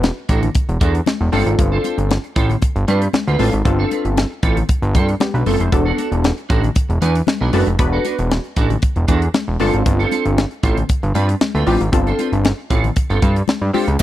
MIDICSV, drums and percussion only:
0, 0, Header, 1, 2, 480
1, 0, Start_track
1, 0, Tempo, 517241
1, 1471, Time_signature, 4, 2, 24, 8
1, 13015, End_track
2, 0, Start_track
2, 0, Title_t, "Drums"
2, 33, Note_on_c, 9, 63, 77
2, 36, Note_on_c, 9, 38, 104
2, 126, Note_off_c, 9, 63, 0
2, 129, Note_off_c, 9, 38, 0
2, 268, Note_on_c, 9, 42, 82
2, 271, Note_on_c, 9, 36, 93
2, 361, Note_off_c, 9, 42, 0
2, 364, Note_off_c, 9, 36, 0
2, 396, Note_on_c, 9, 64, 62
2, 400, Note_on_c, 9, 42, 49
2, 489, Note_off_c, 9, 64, 0
2, 492, Note_off_c, 9, 42, 0
2, 507, Note_on_c, 9, 42, 96
2, 508, Note_on_c, 9, 62, 30
2, 513, Note_on_c, 9, 36, 107
2, 600, Note_off_c, 9, 42, 0
2, 600, Note_off_c, 9, 62, 0
2, 606, Note_off_c, 9, 36, 0
2, 640, Note_on_c, 9, 42, 36
2, 733, Note_off_c, 9, 42, 0
2, 752, Note_on_c, 9, 36, 91
2, 752, Note_on_c, 9, 42, 84
2, 756, Note_on_c, 9, 62, 55
2, 844, Note_off_c, 9, 42, 0
2, 845, Note_off_c, 9, 36, 0
2, 849, Note_off_c, 9, 62, 0
2, 880, Note_on_c, 9, 42, 55
2, 973, Note_off_c, 9, 42, 0
2, 987, Note_on_c, 9, 63, 85
2, 997, Note_on_c, 9, 38, 101
2, 1080, Note_off_c, 9, 63, 0
2, 1089, Note_off_c, 9, 38, 0
2, 1230, Note_on_c, 9, 46, 80
2, 1233, Note_on_c, 9, 63, 75
2, 1323, Note_off_c, 9, 46, 0
2, 1326, Note_off_c, 9, 63, 0
2, 1362, Note_on_c, 9, 42, 42
2, 1455, Note_off_c, 9, 42, 0
2, 1473, Note_on_c, 9, 36, 102
2, 1473, Note_on_c, 9, 62, 47
2, 1474, Note_on_c, 9, 42, 83
2, 1566, Note_off_c, 9, 36, 0
2, 1566, Note_off_c, 9, 62, 0
2, 1567, Note_off_c, 9, 42, 0
2, 1709, Note_on_c, 9, 62, 48
2, 1716, Note_on_c, 9, 42, 79
2, 1802, Note_off_c, 9, 62, 0
2, 1809, Note_off_c, 9, 42, 0
2, 1841, Note_on_c, 9, 42, 44
2, 1933, Note_off_c, 9, 42, 0
2, 1955, Note_on_c, 9, 63, 79
2, 1962, Note_on_c, 9, 38, 105
2, 2048, Note_off_c, 9, 63, 0
2, 2055, Note_off_c, 9, 38, 0
2, 2079, Note_on_c, 9, 42, 30
2, 2172, Note_off_c, 9, 42, 0
2, 2190, Note_on_c, 9, 42, 73
2, 2192, Note_on_c, 9, 36, 94
2, 2283, Note_off_c, 9, 42, 0
2, 2285, Note_off_c, 9, 36, 0
2, 2316, Note_on_c, 9, 64, 61
2, 2326, Note_on_c, 9, 42, 49
2, 2409, Note_off_c, 9, 64, 0
2, 2419, Note_off_c, 9, 42, 0
2, 2428, Note_on_c, 9, 62, 31
2, 2431, Note_on_c, 9, 42, 92
2, 2435, Note_on_c, 9, 36, 100
2, 2520, Note_off_c, 9, 62, 0
2, 2524, Note_off_c, 9, 42, 0
2, 2528, Note_off_c, 9, 36, 0
2, 2562, Note_on_c, 9, 42, 32
2, 2655, Note_off_c, 9, 42, 0
2, 2673, Note_on_c, 9, 42, 79
2, 2677, Note_on_c, 9, 62, 50
2, 2766, Note_off_c, 9, 42, 0
2, 2770, Note_off_c, 9, 62, 0
2, 2799, Note_on_c, 9, 42, 57
2, 2892, Note_off_c, 9, 42, 0
2, 2909, Note_on_c, 9, 63, 82
2, 2914, Note_on_c, 9, 38, 101
2, 3001, Note_off_c, 9, 63, 0
2, 3007, Note_off_c, 9, 38, 0
2, 3042, Note_on_c, 9, 42, 35
2, 3135, Note_off_c, 9, 42, 0
2, 3147, Note_on_c, 9, 46, 87
2, 3154, Note_on_c, 9, 63, 72
2, 3240, Note_off_c, 9, 46, 0
2, 3246, Note_off_c, 9, 63, 0
2, 3277, Note_on_c, 9, 42, 44
2, 3370, Note_off_c, 9, 42, 0
2, 3391, Note_on_c, 9, 36, 100
2, 3391, Note_on_c, 9, 42, 82
2, 3392, Note_on_c, 9, 62, 50
2, 3483, Note_off_c, 9, 42, 0
2, 3484, Note_off_c, 9, 36, 0
2, 3484, Note_off_c, 9, 62, 0
2, 3631, Note_on_c, 9, 62, 42
2, 3635, Note_on_c, 9, 42, 83
2, 3724, Note_off_c, 9, 62, 0
2, 3728, Note_off_c, 9, 42, 0
2, 3759, Note_on_c, 9, 42, 44
2, 3852, Note_off_c, 9, 42, 0
2, 3874, Note_on_c, 9, 63, 83
2, 3879, Note_on_c, 9, 38, 103
2, 3967, Note_off_c, 9, 63, 0
2, 3972, Note_off_c, 9, 38, 0
2, 4109, Note_on_c, 9, 42, 77
2, 4111, Note_on_c, 9, 36, 91
2, 4202, Note_off_c, 9, 42, 0
2, 4204, Note_off_c, 9, 36, 0
2, 4240, Note_on_c, 9, 64, 63
2, 4243, Note_on_c, 9, 42, 52
2, 4333, Note_off_c, 9, 64, 0
2, 4336, Note_off_c, 9, 42, 0
2, 4349, Note_on_c, 9, 62, 31
2, 4350, Note_on_c, 9, 42, 92
2, 4354, Note_on_c, 9, 36, 105
2, 4442, Note_off_c, 9, 62, 0
2, 4443, Note_off_c, 9, 42, 0
2, 4447, Note_off_c, 9, 36, 0
2, 4479, Note_on_c, 9, 42, 33
2, 4572, Note_off_c, 9, 42, 0
2, 4590, Note_on_c, 9, 42, 77
2, 4592, Note_on_c, 9, 36, 91
2, 4598, Note_on_c, 9, 62, 55
2, 4683, Note_off_c, 9, 42, 0
2, 4685, Note_off_c, 9, 36, 0
2, 4691, Note_off_c, 9, 62, 0
2, 4720, Note_on_c, 9, 42, 53
2, 4813, Note_off_c, 9, 42, 0
2, 4828, Note_on_c, 9, 63, 84
2, 4835, Note_on_c, 9, 38, 111
2, 4921, Note_off_c, 9, 63, 0
2, 4928, Note_off_c, 9, 38, 0
2, 4966, Note_on_c, 9, 42, 34
2, 5059, Note_off_c, 9, 42, 0
2, 5069, Note_on_c, 9, 46, 88
2, 5073, Note_on_c, 9, 63, 76
2, 5162, Note_off_c, 9, 46, 0
2, 5166, Note_off_c, 9, 63, 0
2, 5199, Note_on_c, 9, 42, 45
2, 5200, Note_on_c, 9, 63, 46
2, 5292, Note_off_c, 9, 42, 0
2, 5293, Note_off_c, 9, 63, 0
2, 5312, Note_on_c, 9, 36, 92
2, 5312, Note_on_c, 9, 42, 89
2, 5313, Note_on_c, 9, 62, 45
2, 5404, Note_off_c, 9, 36, 0
2, 5405, Note_off_c, 9, 42, 0
2, 5406, Note_off_c, 9, 62, 0
2, 5551, Note_on_c, 9, 62, 48
2, 5555, Note_on_c, 9, 42, 83
2, 5644, Note_off_c, 9, 62, 0
2, 5648, Note_off_c, 9, 42, 0
2, 5680, Note_on_c, 9, 42, 41
2, 5773, Note_off_c, 9, 42, 0
2, 5794, Note_on_c, 9, 63, 83
2, 5799, Note_on_c, 9, 38, 104
2, 5887, Note_off_c, 9, 63, 0
2, 5892, Note_off_c, 9, 38, 0
2, 5917, Note_on_c, 9, 42, 33
2, 6010, Note_off_c, 9, 42, 0
2, 6031, Note_on_c, 9, 36, 101
2, 6032, Note_on_c, 9, 42, 77
2, 6124, Note_off_c, 9, 36, 0
2, 6125, Note_off_c, 9, 42, 0
2, 6157, Note_on_c, 9, 64, 58
2, 6165, Note_on_c, 9, 42, 50
2, 6250, Note_off_c, 9, 64, 0
2, 6258, Note_off_c, 9, 42, 0
2, 6266, Note_on_c, 9, 62, 31
2, 6271, Note_on_c, 9, 42, 99
2, 6274, Note_on_c, 9, 36, 105
2, 6359, Note_off_c, 9, 62, 0
2, 6364, Note_off_c, 9, 42, 0
2, 6367, Note_off_c, 9, 36, 0
2, 6401, Note_on_c, 9, 42, 34
2, 6494, Note_off_c, 9, 42, 0
2, 6512, Note_on_c, 9, 42, 89
2, 6515, Note_on_c, 9, 62, 56
2, 6605, Note_off_c, 9, 42, 0
2, 6608, Note_off_c, 9, 62, 0
2, 6639, Note_on_c, 9, 42, 51
2, 6732, Note_off_c, 9, 42, 0
2, 6746, Note_on_c, 9, 63, 82
2, 6756, Note_on_c, 9, 38, 103
2, 6839, Note_off_c, 9, 63, 0
2, 6849, Note_off_c, 9, 38, 0
2, 6987, Note_on_c, 9, 46, 90
2, 6990, Note_on_c, 9, 63, 70
2, 7080, Note_off_c, 9, 46, 0
2, 7083, Note_off_c, 9, 63, 0
2, 7117, Note_on_c, 9, 42, 40
2, 7210, Note_off_c, 9, 42, 0
2, 7228, Note_on_c, 9, 42, 87
2, 7230, Note_on_c, 9, 36, 96
2, 7230, Note_on_c, 9, 62, 48
2, 7320, Note_off_c, 9, 42, 0
2, 7323, Note_off_c, 9, 36, 0
2, 7323, Note_off_c, 9, 62, 0
2, 7467, Note_on_c, 9, 62, 46
2, 7473, Note_on_c, 9, 42, 81
2, 7560, Note_off_c, 9, 62, 0
2, 7565, Note_off_c, 9, 42, 0
2, 7596, Note_on_c, 9, 42, 42
2, 7689, Note_off_c, 9, 42, 0
2, 7716, Note_on_c, 9, 63, 82
2, 7717, Note_on_c, 9, 38, 109
2, 7809, Note_off_c, 9, 63, 0
2, 7810, Note_off_c, 9, 38, 0
2, 7832, Note_on_c, 9, 42, 28
2, 7925, Note_off_c, 9, 42, 0
2, 7947, Note_on_c, 9, 42, 77
2, 7949, Note_on_c, 9, 36, 95
2, 8040, Note_off_c, 9, 42, 0
2, 8042, Note_off_c, 9, 36, 0
2, 8075, Note_on_c, 9, 64, 57
2, 8078, Note_on_c, 9, 42, 54
2, 8168, Note_off_c, 9, 64, 0
2, 8170, Note_off_c, 9, 42, 0
2, 8185, Note_on_c, 9, 42, 91
2, 8192, Note_on_c, 9, 36, 98
2, 8278, Note_off_c, 9, 42, 0
2, 8285, Note_off_c, 9, 36, 0
2, 8314, Note_on_c, 9, 42, 32
2, 8407, Note_off_c, 9, 42, 0
2, 8427, Note_on_c, 9, 42, 86
2, 8430, Note_on_c, 9, 36, 83
2, 8435, Note_on_c, 9, 62, 58
2, 8519, Note_off_c, 9, 42, 0
2, 8523, Note_off_c, 9, 36, 0
2, 8528, Note_off_c, 9, 62, 0
2, 8557, Note_on_c, 9, 42, 55
2, 8650, Note_off_c, 9, 42, 0
2, 8668, Note_on_c, 9, 63, 84
2, 8672, Note_on_c, 9, 38, 105
2, 8761, Note_off_c, 9, 63, 0
2, 8765, Note_off_c, 9, 38, 0
2, 8905, Note_on_c, 9, 46, 84
2, 8912, Note_on_c, 9, 63, 74
2, 8998, Note_off_c, 9, 46, 0
2, 9005, Note_off_c, 9, 63, 0
2, 9036, Note_on_c, 9, 42, 48
2, 9128, Note_off_c, 9, 42, 0
2, 9150, Note_on_c, 9, 36, 99
2, 9150, Note_on_c, 9, 42, 87
2, 9150, Note_on_c, 9, 62, 45
2, 9243, Note_off_c, 9, 36, 0
2, 9243, Note_off_c, 9, 42, 0
2, 9243, Note_off_c, 9, 62, 0
2, 9281, Note_on_c, 9, 42, 35
2, 9374, Note_off_c, 9, 42, 0
2, 9386, Note_on_c, 9, 62, 45
2, 9393, Note_on_c, 9, 42, 78
2, 9479, Note_off_c, 9, 62, 0
2, 9486, Note_off_c, 9, 42, 0
2, 9516, Note_on_c, 9, 42, 42
2, 9609, Note_off_c, 9, 42, 0
2, 9633, Note_on_c, 9, 63, 79
2, 9636, Note_on_c, 9, 38, 99
2, 9726, Note_off_c, 9, 63, 0
2, 9728, Note_off_c, 9, 38, 0
2, 9753, Note_on_c, 9, 42, 29
2, 9846, Note_off_c, 9, 42, 0
2, 9867, Note_on_c, 9, 42, 73
2, 9869, Note_on_c, 9, 36, 101
2, 9960, Note_off_c, 9, 42, 0
2, 9962, Note_off_c, 9, 36, 0
2, 9998, Note_on_c, 9, 64, 63
2, 9999, Note_on_c, 9, 42, 48
2, 10091, Note_off_c, 9, 64, 0
2, 10092, Note_off_c, 9, 42, 0
2, 10107, Note_on_c, 9, 42, 95
2, 10112, Note_on_c, 9, 36, 100
2, 10200, Note_off_c, 9, 42, 0
2, 10205, Note_off_c, 9, 36, 0
2, 10238, Note_on_c, 9, 42, 34
2, 10331, Note_off_c, 9, 42, 0
2, 10348, Note_on_c, 9, 42, 84
2, 10356, Note_on_c, 9, 62, 58
2, 10441, Note_off_c, 9, 42, 0
2, 10449, Note_off_c, 9, 62, 0
2, 10476, Note_on_c, 9, 42, 55
2, 10569, Note_off_c, 9, 42, 0
2, 10589, Note_on_c, 9, 63, 83
2, 10590, Note_on_c, 9, 38, 110
2, 10682, Note_off_c, 9, 63, 0
2, 10683, Note_off_c, 9, 38, 0
2, 10721, Note_on_c, 9, 42, 37
2, 10814, Note_off_c, 9, 42, 0
2, 10827, Note_on_c, 9, 46, 78
2, 10834, Note_on_c, 9, 63, 74
2, 10919, Note_off_c, 9, 46, 0
2, 10927, Note_off_c, 9, 63, 0
2, 10956, Note_on_c, 9, 42, 45
2, 11049, Note_off_c, 9, 42, 0
2, 11070, Note_on_c, 9, 36, 92
2, 11070, Note_on_c, 9, 42, 83
2, 11073, Note_on_c, 9, 62, 45
2, 11162, Note_off_c, 9, 36, 0
2, 11163, Note_off_c, 9, 42, 0
2, 11165, Note_off_c, 9, 62, 0
2, 11200, Note_on_c, 9, 42, 35
2, 11293, Note_off_c, 9, 42, 0
2, 11310, Note_on_c, 9, 62, 43
2, 11313, Note_on_c, 9, 42, 79
2, 11403, Note_off_c, 9, 62, 0
2, 11406, Note_off_c, 9, 42, 0
2, 11439, Note_on_c, 9, 42, 39
2, 11532, Note_off_c, 9, 42, 0
2, 11551, Note_on_c, 9, 63, 80
2, 11558, Note_on_c, 9, 38, 107
2, 11644, Note_off_c, 9, 63, 0
2, 11651, Note_off_c, 9, 38, 0
2, 11789, Note_on_c, 9, 42, 74
2, 11790, Note_on_c, 9, 36, 89
2, 11882, Note_off_c, 9, 42, 0
2, 11883, Note_off_c, 9, 36, 0
2, 11916, Note_on_c, 9, 64, 62
2, 11920, Note_on_c, 9, 42, 47
2, 12009, Note_off_c, 9, 64, 0
2, 12013, Note_off_c, 9, 42, 0
2, 12027, Note_on_c, 9, 42, 95
2, 12033, Note_on_c, 9, 36, 104
2, 12119, Note_off_c, 9, 42, 0
2, 12126, Note_off_c, 9, 36, 0
2, 12159, Note_on_c, 9, 42, 37
2, 12252, Note_off_c, 9, 42, 0
2, 12271, Note_on_c, 9, 42, 78
2, 12272, Note_on_c, 9, 36, 93
2, 12275, Note_on_c, 9, 62, 56
2, 12363, Note_off_c, 9, 42, 0
2, 12365, Note_off_c, 9, 36, 0
2, 12368, Note_off_c, 9, 62, 0
2, 12401, Note_on_c, 9, 42, 56
2, 12494, Note_off_c, 9, 42, 0
2, 12506, Note_on_c, 9, 63, 79
2, 12518, Note_on_c, 9, 38, 115
2, 12599, Note_off_c, 9, 63, 0
2, 12611, Note_off_c, 9, 38, 0
2, 12751, Note_on_c, 9, 46, 80
2, 12755, Note_on_c, 9, 63, 80
2, 12844, Note_off_c, 9, 46, 0
2, 12848, Note_off_c, 9, 63, 0
2, 12881, Note_on_c, 9, 42, 47
2, 12974, Note_off_c, 9, 42, 0
2, 13015, End_track
0, 0, End_of_file